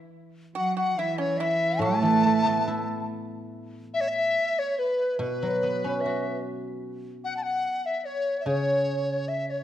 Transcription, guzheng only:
Already playing: E3
1.79 A2
2.03 E3
2.25 A3
2.46 B3
2.67 E4
5.19 B2
5.43 F#3
5.63 B3
5.84 C#4
6.06 F#4
8.46 C#3

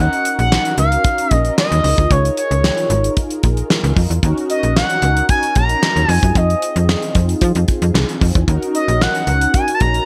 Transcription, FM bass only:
0.39 A#1
0.78 C#2
1.31 A#1
1.72 D#2
1.84 C#2
1.98 D2
2.11 C#2
2.51 C#2
2.90 G#1
3.44 A#1
3.84 C#2
3.97 F2
4.10 E2
4.23 D#2
4.63 A#1
5.02 C#2
5.56 A#1
5.96 D#2
6.09 F2
6.23 F#2
6.35 F2
6.76 F2
7.15 F2
7.42 F3
7.56 F2
7.82 F2
7.94 C2
8.22 F2
8.35 E2
8.48 D#2
8.88 A#1
9.27 C#2
9.81 A#1

